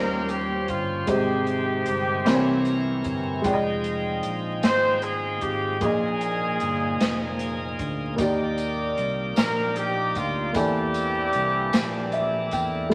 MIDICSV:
0, 0, Header, 1, 7, 480
1, 0, Start_track
1, 0, Tempo, 789474
1, 657, Time_signature, 6, 3, 24, 8
1, 7869, End_track
2, 0, Start_track
2, 0, Title_t, "Horn section"
2, 0, Program_c, 0, 61
2, 0, Note_on_c, 0, 61, 67
2, 0, Note_on_c, 0, 67, 67
2, 0, Note_on_c, 0, 70, 93
2, 164, Note_off_c, 0, 70, 0
2, 187, Note_off_c, 0, 67, 0
2, 194, Note_on_c, 0, 67, 75
2, 426, Note_off_c, 0, 67, 0
2, 427, Note_on_c, 0, 65, 70
2, 524, Note_off_c, 0, 65, 0
2, 636, Note_off_c, 0, 61, 0
2, 663, Note_on_c, 0, 67, 82
2, 667, Note_on_c, 0, 60, 59
2, 667, Note_on_c, 0, 63, 64
2, 1835, Note_off_c, 0, 67, 0
2, 1836, Note_off_c, 0, 60, 0
2, 1836, Note_off_c, 0, 63, 0
2, 2825, Note_on_c, 0, 72, 102
2, 3044, Note_off_c, 0, 72, 0
2, 3051, Note_on_c, 0, 68, 79
2, 3276, Note_off_c, 0, 68, 0
2, 3291, Note_on_c, 0, 67, 78
2, 3533, Note_off_c, 0, 67, 0
2, 3537, Note_on_c, 0, 65, 60
2, 3542, Note_on_c, 0, 68, 76
2, 3544, Note_on_c, 0, 63, 64
2, 4712, Note_off_c, 0, 65, 0
2, 4716, Note_off_c, 0, 63, 0
2, 4739, Note_off_c, 0, 68, 0
2, 5702, Note_on_c, 0, 70, 100
2, 5923, Note_off_c, 0, 70, 0
2, 5942, Note_on_c, 0, 67, 84
2, 6179, Note_off_c, 0, 67, 0
2, 6185, Note_on_c, 0, 65, 85
2, 6421, Note_off_c, 0, 65, 0
2, 6426, Note_on_c, 0, 60, 61
2, 6427, Note_on_c, 0, 58, 61
2, 6427, Note_on_c, 0, 67, 82
2, 7598, Note_off_c, 0, 58, 0
2, 7598, Note_off_c, 0, 60, 0
2, 7623, Note_off_c, 0, 67, 0
2, 7869, End_track
3, 0, Start_track
3, 0, Title_t, "Trumpet"
3, 0, Program_c, 1, 56
3, 0, Note_on_c, 1, 70, 92
3, 184, Note_on_c, 1, 67, 81
3, 193, Note_off_c, 1, 70, 0
3, 423, Note_on_c, 1, 65, 79
3, 432, Note_off_c, 1, 67, 0
3, 667, Note_on_c, 1, 67, 84
3, 676, Note_off_c, 1, 65, 0
3, 1861, Note_off_c, 1, 67, 0
3, 2827, Note_on_c, 1, 72, 102
3, 3063, Note_on_c, 1, 68, 85
3, 3072, Note_off_c, 1, 72, 0
3, 3298, Note_on_c, 1, 67, 74
3, 3307, Note_off_c, 1, 68, 0
3, 3532, Note_on_c, 1, 68, 85
3, 3541, Note_off_c, 1, 67, 0
3, 4734, Note_off_c, 1, 68, 0
3, 5693, Note_on_c, 1, 70, 94
3, 5941, Note_on_c, 1, 67, 81
3, 5950, Note_off_c, 1, 70, 0
3, 6184, Note_on_c, 1, 65, 78
3, 6193, Note_off_c, 1, 67, 0
3, 6420, Note_on_c, 1, 67, 82
3, 6429, Note_off_c, 1, 65, 0
3, 7619, Note_off_c, 1, 67, 0
3, 7869, End_track
4, 0, Start_track
4, 0, Title_t, "Grand piano"
4, 0, Program_c, 2, 0
4, 0, Note_on_c, 2, 51, 52
4, 0, Note_on_c, 2, 55, 60
4, 0, Note_on_c, 2, 61, 54
4, 0, Note_on_c, 2, 65, 52
4, 0, Note_on_c, 2, 72, 64
4, 59, Control_c, 2, 64, 127
4, 634, Note_off_c, 2, 51, 0
4, 650, Note_on_c, 2, 56, 63
4, 655, Note_off_c, 2, 55, 0
4, 655, Note_on_c, 2, 63, 52
4, 657, Note_off_c, 2, 61, 0
4, 657, Note_off_c, 2, 72, 0
4, 657, Note_on_c, 2, 48, 59
4, 661, Note_off_c, 2, 65, 0
4, 662, Note_on_c, 2, 67, 52
4, 664, Control_c, 2, 64, 0
4, 666, Note_on_c, 2, 72, 62
4, 775, Control_c, 2, 64, 127
4, 1352, Note_off_c, 2, 48, 0
4, 1368, Note_on_c, 2, 60, 71
4, 1371, Note_on_c, 2, 52, 64
4, 1372, Note_off_c, 2, 56, 0
4, 1375, Note_off_c, 2, 63, 0
4, 1375, Note_on_c, 2, 48, 69
4, 1376, Note_off_c, 2, 72, 0
4, 1379, Note_off_c, 2, 67, 0
4, 1379, Note_on_c, 2, 70, 66
4, 1385, Control_c, 2, 64, 0
4, 1385, Note_on_c, 2, 72, 67
4, 1420, Note_off_c, 2, 72, 0
4, 1423, Note_on_c, 2, 73, 71
4, 1505, Control_c, 2, 64, 127
4, 2071, Note_off_c, 2, 48, 0
4, 2077, Note_on_c, 2, 56, 67
4, 2090, Note_on_c, 2, 65, 60
4, 2091, Note_off_c, 2, 60, 0
4, 2093, Note_off_c, 2, 52, 0
4, 2097, Note_off_c, 2, 70, 0
4, 2100, Note_on_c, 2, 79, 56
4, 2105, Control_c, 2, 64, 0
4, 2111, Note_on_c, 2, 74, 58
4, 2119, Note_off_c, 2, 73, 0
4, 2143, Note_off_c, 2, 74, 0
4, 2151, Note_on_c, 2, 75, 79
4, 2220, Control_c, 2, 64, 127
4, 3501, Note_off_c, 2, 56, 0
4, 3508, Note_off_c, 2, 65, 0
4, 3513, Note_off_c, 2, 79, 0
4, 3527, Note_on_c, 2, 58, 54
4, 3538, Note_on_c, 2, 65, 55
4, 3539, Note_off_c, 2, 75, 0
4, 3542, Note_on_c, 2, 46, 60
4, 3543, Control_c, 2, 64, 0
4, 3547, Note_on_c, 2, 68, 56
4, 3559, Note_on_c, 2, 75, 63
4, 3648, Control_c, 2, 64, 127
4, 4234, Note_off_c, 2, 46, 0
4, 4947, Note_off_c, 2, 58, 0
4, 4953, Note_off_c, 2, 65, 0
4, 4957, Note_off_c, 2, 68, 0
4, 4962, Note_on_c, 2, 58, 74
4, 4963, Note_off_c, 2, 75, 0
4, 4972, Note_on_c, 2, 63, 68
4, 4976, Note_on_c, 2, 51, 67
4, 4983, Control_c, 2, 64, 0
4, 4984, Note_on_c, 2, 67, 62
4, 4995, Note_on_c, 2, 74, 78
4, 5101, Control_c, 2, 64, 127
4, 5672, Note_off_c, 2, 51, 0
4, 6385, Note_off_c, 2, 58, 0
4, 6390, Note_off_c, 2, 63, 0
4, 6396, Note_off_c, 2, 67, 0
4, 6398, Note_on_c, 2, 58, 61
4, 6401, Note_off_c, 2, 74, 0
4, 6409, Note_on_c, 2, 64, 55
4, 6414, Note_on_c, 2, 52, 58
4, 6420, Note_on_c, 2, 69, 55
4, 6423, Control_c, 2, 64, 0
4, 6429, Note_on_c, 2, 74, 68
4, 6516, Control_c, 2, 64, 127
4, 7111, Note_off_c, 2, 52, 0
4, 7377, Note_on_c, 2, 76, 69
4, 7600, Note_off_c, 2, 76, 0
4, 7619, Note_on_c, 2, 79, 54
4, 7824, Note_off_c, 2, 58, 0
4, 7829, Note_off_c, 2, 64, 0
4, 7835, Note_off_c, 2, 69, 0
4, 7839, Note_off_c, 2, 74, 0
4, 7840, Note_on_c, 2, 57, 69
4, 7841, Note_off_c, 2, 79, 0
4, 7865, Control_c, 2, 64, 0
4, 7869, Note_off_c, 2, 57, 0
4, 7869, End_track
5, 0, Start_track
5, 0, Title_t, "Tonewheel organ"
5, 0, Program_c, 3, 16
5, 0, Note_on_c, 3, 53, 56
5, 0, Note_on_c, 3, 61, 55
5, 0, Note_on_c, 3, 67, 61
5, 0, Note_on_c, 3, 72, 53
5, 652, Note_off_c, 3, 67, 0
5, 658, Note_on_c, 3, 51, 51
5, 658, Note_on_c, 3, 60, 45
5, 659, Note_on_c, 3, 56, 47
5, 660, Note_off_c, 3, 53, 0
5, 660, Note_off_c, 3, 61, 0
5, 660, Note_off_c, 3, 72, 0
5, 660, Note_on_c, 3, 67, 56
5, 1371, Note_off_c, 3, 60, 0
5, 1374, Note_on_c, 3, 49, 59
5, 1374, Note_on_c, 3, 70, 79
5, 1377, Note_off_c, 3, 51, 0
5, 1377, Note_off_c, 3, 56, 0
5, 1378, Note_off_c, 3, 67, 0
5, 1378, Note_on_c, 3, 60, 68
5, 1379, Note_on_c, 3, 73, 65
5, 1415, Note_off_c, 3, 49, 0
5, 1418, Note_on_c, 3, 52, 69
5, 1610, Note_on_c, 3, 82, 62
5, 2068, Note_off_c, 3, 82, 0
5, 2095, Note_off_c, 3, 70, 0
5, 2097, Note_off_c, 3, 60, 0
5, 2097, Note_off_c, 3, 73, 0
5, 2097, Note_on_c, 3, 63, 57
5, 2097, Note_on_c, 3, 66, 56
5, 2099, Note_on_c, 3, 53, 63
5, 2099, Note_on_c, 3, 56, 64
5, 2117, Note_off_c, 3, 52, 0
5, 2134, Note_on_c, 3, 79, 74
5, 2136, Note_off_c, 3, 66, 0
5, 3512, Note_off_c, 3, 53, 0
5, 3512, Note_off_c, 3, 56, 0
5, 3512, Note_off_c, 3, 63, 0
5, 3530, Note_off_c, 3, 79, 0
5, 3543, Note_on_c, 3, 53, 54
5, 3543, Note_on_c, 3, 58, 52
5, 3544, Note_on_c, 3, 68, 62
5, 3546, Note_on_c, 3, 63, 47
5, 4955, Note_off_c, 3, 53, 0
5, 4955, Note_off_c, 3, 58, 0
5, 4955, Note_off_c, 3, 68, 0
5, 4956, Note_off_c, 3, 63, 0
5, 4978, Note_on_c, 3, 74, 62
5, 4979, Note_on_c, 3, 63, 67
5, 4980, Note_on_c, 3, 67, 66
5, 4981, Note_on_c, 3, 58, 55
5, 6393, Note_off_c, 3, 74, 0
5, 6394, Note_off_c, 3, 63, 0
5, 6394, Note_off_c, 3, 67, 0
5, 6395, Note_off_c, 3, 58, 0
5, 6415, Note_on_c, 3, 50, 48
5, 6418, Note_on_c, 3, 69, 55
5, 6420, Note_on_c, 3, 58, 52
5, 6420, Note_on_c, 3, 62, 57
5, 6451, Note_on_c, 3, 52, 53
5, 6455, Note_off_c, 3, 50, 0
5, 7834, Note_off_c, 3, 69, 0
5, 7835, Note_off_c, 3, 58, 0
5, 7835, Note_off_c, 3, 62, 0
5, 7850, Note_off_c, 3, 52, 0
5, 7850, Note_on_c, 3, 53, 66
5, 7869, Note_off_c, 3, 53, 0
5, 7869, End_track
6, 0, Start_track
6, 0, Title_t, "Fingered electric bass"
6, 0, Program_c, 4, 33
6, 0, Note_on_c, 4, 39, 87
6, 394, Note_off_c, 4, 39, 0
6, 422, Note_on_c, 4, 31, 78
6, 640, Note_off_c, 4, 31, 0
6, 657, Note_on_c, 4, 32, 92
6, 1112, Note_off_c, 4, 32, 0
6, 1141, Note_on_c, 4, 31, 87
6, 1360, Note_off_c, 4, 31, 0
6, 1378, Note_on_c, 4, 36, 95
6, 1833, Note_off_c, 4, 36, 0
6, 1857, Note_on_c, 4, 31, 75
6, 2077, Note_off_c, 4, 31, 0
6, 2095, Note_on_c, 4, 29, 90
6, 2551, Note_off_c, 4, 29, 0
6, 2583, Note_on_c, 4, 34, 77
6, 2800, Note_off_c, 4, 34, 0
6, 2825, Note_on_c, 4, 32, 90
6, 3276, Note_off_c, 4, 32, 0
6, 3299, Note_on_c, 4, 32, 86
6, 3518, Note_off_c, 4, 32, 0
6, 3536, Note_on_c, 4, 34, 97
6, 3991, Note_off_c, 4, 34, 0
6, 4021, Note_on_c, 4, 31, 78
6, 4239, Note_off_c, 4, 31, 0
6, 4260, Note_on_c, 4, 29, 79
6, 4713, Note_off_c, 4, 29, 0
6, 4740, Note_on_c, 4, 38, 92
6, 4959, Note_off_c, 4, 38, 0
6, 4977, Note_on_c, 4, 39, 79
6, 5432, Note_off_c, 4, 39, 0
6, 5458, Note_on_c, 4, 36, 82
6, 5678, Note_off_c, 4, 36, 0
6, 5700, Note_on_c, 4, 34, 88
6, 6154, Note_off_c, 4, 34, 0
6, 6180, Note_on_c, 4, 38, 85
6, 6399, Note_off_c, 4, 38, 0
6, 6417, Note_on_c, 4, 40, 77
6, 6872, Note_off_c, 4, 40, 0
6, 6899, Note_on_c, 4, 36, 82
6, 7119, Note_off_c, 4, 36, 0
6, 7139, Note_on_c, 4, 34, 78
6, 7594, Note_off_c, 4, 34, 0
6, 7620, Note_on_c, 4, 40, 75
6, 7839, Note_off_c, 4, 40, 0
6, 7869, End_track
7, 0, Start_track
7, 0, Title_t, "Drums"
7, 174, Note_on_c, 9, 42, 49
7, 235, Note_off_c, 9, 42, 0
7, 413, Note_on_c, 9, 42, 38
7, 419, Note_on_c, 9, 36, 74
7, 474, Note_off_c, 9, 42, 0
7, 480, Note_off_c, 9, 36, 0
7, 652, Note_on_c, 9, 42, 74
7, 655, Note_on_c, 9, 36, 95
7, 713, Note_off_c, 9, 42, 0
7, 716, Note_off_c, 9, 36, 0
7, 892, Note_on_c, 9, 42, 43
7, 953, Note_off_c, 9, 42, 0
7, 1129, Note_on_c, 9, 42, 46
7, 1190, Note_off_c, 9, 42, 0
7, 1374, Note_on_c, 9, 42, 82
7, 1378, Note_on_c, 9, 38, 94
7, 1435, Note_off_c, 9, 42, 0
7, 1439, Note_off_c, 9, 38, 0
7, 1611, Note_on_c, 9, 42, 49
7, 1671, Note_off_c, 9, 42, 0
7, 1850, Note_on_c, 9, 42, 46
7, 1857, Note_on_c, 9, 36, 81
7, 1911, Note_off_c, 9, 42, 0
7, 1918, Note_off_c, 9, 36, 0
7, 2093, Note_on_c, 9, 42, 74
7, 2094, Note_on_c, 9, 36, 98
7, 2154, Note_off_c, 9, 42, 0
7, 2155, Note_off_c, 9, 36, 0
7, 2334, Note_on_c, 9, 42, 42
7, 2395, Note_off_c, 9, 42, 0
7, 2571, Note_on_c, 9, 42, 48
7, 2632, Note_off_c, 9, 42, 0
7, 2815, Note_on_c, 9, 42, 86
7, 2819, Note_on_c, 9, 38, 97
7, 2876, Note_off_c, 9, 42, 0
7, 2880, Note_off_c, 9, 38, 0
7, 3051, Note_on_c, 9, 42, 46
7, 3112, Note_off_c, 9, 42, 0
7, 3290, Note_on_c, 9, 42, 45
7, 3297, Note_on_c, 9, 36, 74
7, 3351, Note_off_c, 9, 42, 0
7, 3358, Note_off_c, 9, 36, 0
7, 3532, Note_on_c, 9, 42, 66
7, 3535, Note_on_c, 9, 36, 99
7, 3592, Note_off_c, 9, 42, 0
7, 3596, Note_off_c, 9, 36, 0
7, 3775, Note_on_c, 9, 42, 44
7, 3835, Note_off_c, 9, 42, 0
7, 4013, Note_on_c, 9, 42, 45
7, 4074, Note_off_c, 9, 42, 0
7, 4259, Note_on_c, 9, 42, 83
7, 4263, Note_on_c, 9, 38, 92
7, 4320, Note_off_c, 9, 42, 0
7, 4324, Note_off_c, 9, 38, 0
7, 4494, Note_on_c, 9, 42, 45
7, 4555, Note_off_c, 9, 42, 0
7, 4736, Note_on_c, 9, 42, 43
7, 4739, Note_on_c, 9, 36, 74
7, 4797, Note_off_c, 9, 42, 0
7, 4800, Note_off_c, 9, 36, 0
7, 4975, Note_on_c, 9, 42, 78
7, 4977, Note_on_c, 9, 36, 102
7, 4977, Note_on_c, 9, 54, 50
7, 5035, Note_off_c, 9, 42, 0
7, 5038, Note_off_c, 9, 36, 0
7, 5038, Note_off_c, 9, 54, 0
7, 5214, Note_on_c, 9, 54, 43
7, 5215, Note_on_c, 9, 42, 44
7, 5275, Note_off_c, 9, 54, 0
7, 5276, Note_off_c, 9, 42, 0
7, 5457, Note_on_c, 9, 42, 42
7, 5517, Note_off_c, 9, 42, 0
7, 5692, Note_on_c, 9, 54, 79
7, 5696, Note_on_c, 9, 42, 80
7, 5700, Note_on_c, 9, 38, 94
7, 5752, Note_off_c, 9, 54, 0
7, 5757, Note_off_c, 9, 42, 0
7, 5761, Note_off_c, 9, 38, 0
7, 5932, Note_on_c, 9, 42, 47
7, 5993, Note_off_c, 9, 42, 0
7, 6172, Note_on_c, 9, 42, 44
7, 6178, Note_on_c, 9, 36, 75
7, 6180, Note_on_c, 9, 54, 46
7, 6233, Note_off_c, 9, 42, 0
7, 6238, Note_off_c, 9, 36, 0
7, 6240, Note_off_c, 9, 54, 0
7, 6411, Note_on_c, 9, 42, 74
7, 6413, Note_on_c, 9, 54, 55
7, 6414, Note_on_c, 9, 36, 98
7, 6472, Note_off_c, 9, 42, 0
7, 6474, Note_off_c, 9, 54, 0
7, 6475, Note_off_c, 9, 36, 0
7, 6653, Note_on_c, 9, 42, 46
7, 6654, Note_on_c, 9, 54, 47
7, 6714, Note_off_c, 9, 42, 0
7, 6715, Note_off_c, 9, 54, 0
7, 6886, Note_on_c, 9, 42, 44
7, 6947, Note_off_c, 9, 42, 0
7, 7131, Note_on_c, 9, 54, 72
7, 7133, Note_on_c, 9, 42, 80
7, 7137, Note_on_c, 9, 38, 100
7, 7192, Note_off_c, 9, 54, 0
7, 7193, Note_off_c, 9, 42, 0
7, 7198, Note_off_c, 9, 38, 0
7, 7369, Note_on_c, 9, 42, 42
7, 7430, Note_off_c, 9, 42, 0
7, 7608, Note_on_c, 9, 42, 43
7, 7615, Note_on_c, 9, 54, 49
7, 7616, Note_on_c, 9, 36, 72
7, 7669, Note_off_c, 9, 42, 0
7, 7676, Note_off_c, 9, 54, 0
7, 7677, Note_off_c, 9, 36, 0
7, 7869, End_track
0, 0, End_of_file